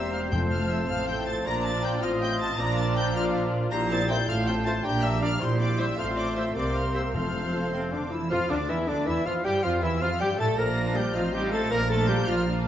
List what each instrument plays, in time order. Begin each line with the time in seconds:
Already playing: double bass section E1, cello section E2, bassoon G3, french horn section A#3 G4, viola section C4 G4, clarinet C4, trumpet C5, oboe C5, violin section E5 E6, flute A#5
0.12 violin section F5 F6
0.31 double bass section F1, timpani F2, cello section F2, bassoon F3, french horn section A3 F4, viola section C4 A4, clarinet F4, trumpet C5, violin section G5 G6, flute A5
0.50 violin section F5 F6
0.69 violin section E5 E6
0.88 double bass section A1, cello section A2, french horn section A3 F4, viola section A4, trumpet C5, violin section F5 F6
1.08 violin section G5 G6
1.26 violin section A5 A6
1.45 double bass section A#1, cello section A#2, french horn section A#3 F4, viola section D4 F4, trumpet D5, oboe D5, violin section A#5 A#6, flute A#5
1.65 violin section A5 A6
1.83 violin section G5 G6
2.02 double bass section A1, cello section A2, french horn section C4 F4, viola section C4, trumpet D#5, oboe D#5, violin section F5 F6, flute C6
2.21 violin section G5 G6
2.40 violin section A5 A6
2.58 double bass section A#1, cello section A#2, bassoon F3, french horn section A#3 F4, viola section D4 F4, clarinet F4, trumpet D5, oboe D5, flute A#5, violin section A#5 A#6
2.77 violin section A5 A6
2.97 violin section G5 G6
3.15 french horn section A#3 F4, viola section D4 F4, trumpet D5, violin section F5 F6
3.71 double bass section A#1, cello section A#2, bassoon G3, clarinet E4, oboe C5, violin section A#5 A#6, flute A#5
3.90 viola section C4 E4, violin section A5 A6
4.09 french horn section A#3 E4, viola section C4 E4, trumpet C5, violin section G5 G6
4.28 double bass section A1, cello section A2, bassoon A3, clarinet F4, oboe C5, violin section F5 F6, flute A5
4.47 viola section C4 F4, violin section G5 G6
4.66 french horn section A3 F4, viola section C4 F4, trumpet C5, violin section A5 A6
4.84 double bass section A#1, cello section A#2, bassoon G3, clarinet D4, oboe D5, violin section G5 G6, flute A#5
5.03 viola section A#3 D4, violin section E5 E6
5.22 french horn section G3 D4, viola section A#3 D4, trumpet D5, violin section F5 F6
5.40 double bass section A#1, cello section A#2, bassoon G3, clarinet E4, violin section C5 C6, oboe C5, flute C6
5.59 viola section C4 E4, violin section D5 D6
5.78 french horn section G3 E4, viola section C4 E4, trumpet C5, violin section E5 E6
5.98 double bass section A1, cello section A2, bassoon A3, viola section C4 F4, clarinet F4, oboe C5, violin section F5 F6, flute C6
6.17 violin section D5 D6
6.36 french horn section A3 F4, trumpet C5, violin section E5 E6
6.55 double bass section C2, cello section C3, bassoon A#3, viola section C4 A#4, clarinet G4, oboe C5, violin section D5 D6, flute C6
6.75 violin section F5 F6
6.94 french horn section A#3 G4, trumpet C5, violin section E5 E6
7.14 double bass section F1, cello section F2, timpani F2, bassoon A3, viola section C4 A4, clarinet F4, oboe C5, violin section F5 F6, flute C6
7.52 french horn section A3 F4, trumpet C5
7.71 cello section C3, french horn section C4, trumpet C4, clarinet C4, violin section C6
7.92 cello section D3, trumpet D4, french horn section D4, clarinet D4, violin section D6
8.11 cello section E3, french horn section A3 E4 F4, clarinet E4, trumpet E4, violin section E6
8.30 double bass section F2, bassoon F3, cello section F3, violin section F4 F6, trumpet F4, french horn section F4, clarinet F4, viola section F4, oboe F5, flute F5
8.49 double bass section D2, bassoon D3, cello section D3, french horn section D4, violin section D4 D6, trumpet D4, clarinet D4, viola section D4, oboe D5, flute D5
8.68 double bass section E2, bassoon E3, cello section E3, french horn section E4, violin section E4 E6, viola section E4, trumpet E4, clarinet E4, oboe E5, flute E5
8.86 double bass section D2, cello section D3, bassoon D3, french horn section D4, viola section D4, clarinet D4, trumpet D4, violin section D4 D6, oboe D5, flute D5
9.06 double bass section E2, bassoon E3, cello section E3, french horn section E4, violin section E4 E6, clarinet E4, viola section E4, trumpet E4, flute E5, oboe E5
9.25 double bass section F2, bassoon F3, cello section F3, french horn section F4, violin section F4 F6, trumpet F4, clarinet F4, viola section F4, flute F5, oboe F5
9.44 double bass section G2, bassoon G3, cello section G3, french horn section G4, clarinet G4, violin section G4 G6, viola section G4, trumpet G4, flute G5, oboe G5
9.63 double bass section F2, bassoon F3, cello section F3, french horn section F4, violin section F4 F6, viola section F4, clarinet F4, trumpet F4, flute F5, oboe F5
9.81 double bass section E2, bassoon E3, cello section E3, french horn section E4, violin section E4 E6, trumpet E4, clarinet E4, viola section E4, flute E5, oboe E5
10.01 double bass section F2, bassoon F3, cello section F3, french horn section F4, violin section F4 F6, clarinet F4, viola section F4, trumpet F4, oboe F5, flute F5
10.20 double bass section G2, bassoon G3, cello section G3, viola section G4, violin section G4 G6, trumpet G4, french horn section G4, clarinet G4, flute G5, oboe G5
10.39 double bass section A2, bassoon A3, cello section A3, violin section A4 A6, french horn section A4, trumpet A4, viola section A4, clarinet A4, oboe A5, flute A5
10.57 double bass section A#1, bassoon F3, cello section A#3, french horn section A#4, oboe A#4, trumpet A#4, clarinet A#4, flute D5, violin section A#6
10.77 viola section A#3 D4, violin section F4 F5
10.95 cello section G3, french horn section G4, trumpet G4, clarinet G4, violin section G6
11.14 double bass section A1, cello section F3, viola section C4 D#4, french horn section F4, violin section F4 F5 F6, trumpet F4, clarinet F4, oboe C5, flute D#5
11.32 cello section G3, viola section C4 D#4, violin section F4 F5 G6, french horn section G4, trumpet G4, clarinet G4
11.52 cello section A3, french horn section A4, clarinet A4, trumpet A4, violin section A6
11.71 double bass section A#1, cello section A#3, clarinet A#4, trumpet A#4, oboe A#4, french horn section A#4, flute D5, violin section A#6
11.89 cello section A3, viola section A#3 D4, violin section F4 F5 A6, french horn section A4, clarinet A4, trumpet A4
12.08 cello section G3, clarinet G4, trumpet G4, french horn section G4, violin section G6
12.27 double bass section A#1, cello section F3, clarinet F4, trumpet F4, french horn section F4, violin section F6
12.45 viola section A#3 D4, violin section F4 F5